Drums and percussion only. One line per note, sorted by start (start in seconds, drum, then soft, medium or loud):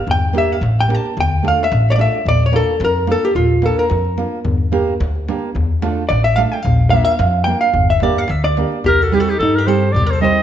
0.08 darbuka dum loud
0.24 darbuka tek soft
0.35 darbuka tek medium
0.63 darbuka tek medium
0.79 darbuka tek soft
0.90 darbuka tek medium
1.18 darbuka dum loud
1.33 darbuka tek soft
1.45 darbuka tek medium
1.72 darbuka tek medium
1.87 darbuka tek soft
1.99 darbuka tek medium
2.26 darbuka dum loud
2.42 darbuka tek soft
2.53 darbuka tek medium
2.81 darbuka tek medium
2.96 darbuka tek soft
3.07 darbuka tek medium
3.35 darbuka dum medium
3.51 darbuka tek soft
3.62 darbuka tek medium
3.78 darbuka tek soft
3.90 darbuka tek medium
4.05 darbuka tek soft
4.18 darbuka tek medium
4.45 darbuka dum loud
4.61 darbuka tek soft
4.73 darbuka tek medium
5.01 darbuka tek medium
5.15 darbuka tek soft
5.28 darbuka tek medium
5.56 darbuka dum loud
5.72 darbuka tek soft
5.82 darbuka tek loud
6.10 darbuka tek medium
6.26 darbuka tek soft
6.38 darbuka tek medium
6.65 darbuka dum loud
6.81 darbuka tek soft
6.92 darbuka tek medium
7.19 darbuka tek medium
7.34 darbuka tek soft
7.46 darbuka tek medium
7.74 darbuka dum loud
7.89 darbuka tek soft
8.00 darbuka tek medium
8.16 darbuka tek soft
8.28 darbuka tek medium
8.46 darbuka tek soft
8.57 darbuka tek medium
8.72 darbuka tek soft
8.84 darbuka dum loud
9.12 darbuka tek medium
9.41 darbuka tek medium
9.68 darbuka tek medium
9.83 darbuka tek soft
9.96 darbuka dum loud
10.23 darbuka tek medium